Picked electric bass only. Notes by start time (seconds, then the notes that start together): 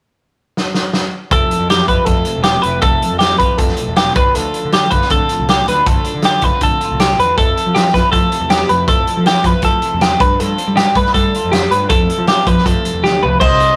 1.31 F1
1.59 F2
1.88 F2
2.07 F2
2.36 E1
2.64 F1
2.83 F1
3.12 F2
3.39 F2
3.59 F2
3.88 E1
4.16 D2
4.36 D2
4.65 D3
4.92 D3
5.11 D3
5.39 C2
5.67 D2
5.86 D2
6.14 D3
6.42 D3
6.61 D3
6.91 C2
7.19 E2
7.38 F2
7.66 F3
7.93 F3
8.13 F3
8.41 E2
8.70 F2
8.88 F2
9.17 F3
9.44 F3
9.63 F3
9.94 E2
10.20 G2
10.41 G2
10.68 G3
10.96 G3
11.15 G3
11.44 F2
11.71 G2
11.90 F2
12.18 F3
12.47 F3
12.66 F3
12.94 E2
13.04 D2
13.23 C2
13.41 C2